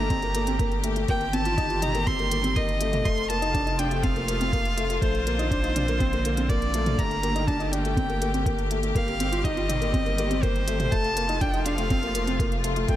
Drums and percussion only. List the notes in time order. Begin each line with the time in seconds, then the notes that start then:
0.10 kick, closed hi-hat
0.22 closed hi-hat
0.35 closed hi-hat
0.47 closed hi-hat
0.59 kick, closed hi-hat
0.72 closed hi-hat
0.84 closed hi-hat
0.96 closed hi-hat
1.08 kick, closed hi-hat
1.21 closed hi-hat
1.33 closed hi-hat
1.45 closed hi-hat
1.58 kick, closed hi-hat
1.70 closed hi-hat
1.82 closed hi-hat, mid tom
1.95 closed hi-hat
2.07 kick, closed hi-hat
2.19 closed hi-hat
2.31 closed hi-hat
2.44 closed hi-hat
2.56 kick, closed hi-hat
2.69 closed hi-hat
2.81 closed hi-hat
2.93 closed hi-hat, mid tom
3.05 kick, closed hi-hat
3.18 closed hi-hat
3.30 closed hi-hat
3.42 closed hi-hat
3.54 kick, closed hi-hat
3.67 closed hi-hat
3.79 closed hi-hat
3.91 closed hi-hat
4.03 kick, closed hi-hat
4.16 closed hi-hat
4.28 closed hi-hat
4.41 closed hi-hat
4.53 kick, closed hi-hat
4.65 closed hi-hat
4.78 closed hi-hat
4.90 closed hi-hat
5.02 kick, closed hi-hat
5.15 closed hi-hat
5.27 closed hi-hat
5.39 closed hi-hat
5.51 kick, closed hi-hat
5.64 closed hi-hat
5.76 closed hi-hat, mid tom
5.88 closed hi-hat
6.00 kick, closed hi-hat
6.13 closed hi-hat
6.25 closed hi-hat
6.37 closed hi-hat
6.49 kick, closed hi-hat
6.62 closed hi-hat
6.74 closed hi-hat
6.86 closed hi-hat, mid tom
6.98 kick, closed hi-hat
7.11 closed hi-hat
7.23 closed hi-hat
7.36 closed hi-hat
7.48 kick, closed hi-hat
7.60 closed hi-hat
7.73 closed hi-hat
7.85 closed hi-hat
7.97 kick, closed hi-hat
8.10 closed hi-hat
8.22 closed hi-hat
8.34 closed hi-hat
8.46 kick, closed hi-hat
8.59 closed hi-hat
8.71 closed hi-hat
8.83 closed hi-hat
8.95 kick, closed hi-hat
9.08 closed hi-hat
9.20 closed hi-hat
9.33 closed hi-hat
9.44 kick, closed hi-hat
9.57 closed hi-hat
9.70 closed hi-hat, mid tom
9.82 closed hi-hat
9.94 kick, closed hi-hat
10.06 closed hi-hat
10.18 closed hi-hat
10.31 closed hi-hat
10.43 kick, closed hi-hat
10.56 closed hi-hat
10.68 closed hi-hat
10.80 closed hi-hat, mid tom
10.92 kick, closed hi-hat
11.04 closed hi-hat
11.17 closed hi-hat
11.29 closed hi-hat
11.41 kick, closed hi-hat
11.54 closed hi-hat
11.66 closed hi-hat
11.78 closed hi-hat
11.90 kick, closed hi-hat
12.03 closed hi-hat
12.15 closed hi-hat
12.27 closed hi-hat
12.39 kick, closed hi-hat
12.52 closed hi-hat
12.64 closed hi-hat
12.76 closed hi-hat
12.88 kick, closed hi-hat